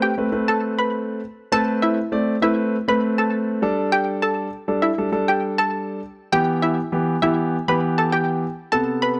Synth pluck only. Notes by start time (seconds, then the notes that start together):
0.02 G4 G5
0.48 A4 A5
0.79 B4 B5
1.52 A4 A5
1.82 E4 E5
2.42 E4 E5
2.89 B4 B5
3.18 A4 A5
3.92 G4 G5
4.22 A4 A5
4.82 E4 E5
5.28 G4 G5
5.58 A4 A5
6.33 G4 G5
6.62 E4 E5
7.22 E4 E5
7.68 B4 B5
7.98 A4 A5
8.12 G4 G5
8.72 A4 A5
9.02 B4 B5